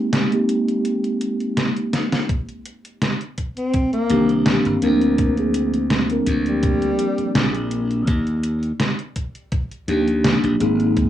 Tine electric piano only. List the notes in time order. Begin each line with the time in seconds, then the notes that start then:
Already playing: G#3 A#3 C4 D#4 G4
0.30 G#3 A#3 C4 D#4 G4
4.10 D#3 A#3 C4 D4 G4
4.82 F3 A#3 C4 D4 A#4
5.37 F3 A#3 C4 D4 G#4
6.09 F3 A#3 C4 D4 A#4
9.88 F3 A#3 D4 D#4 G4
10.59 G#3 A#3 C4 D#4 G#4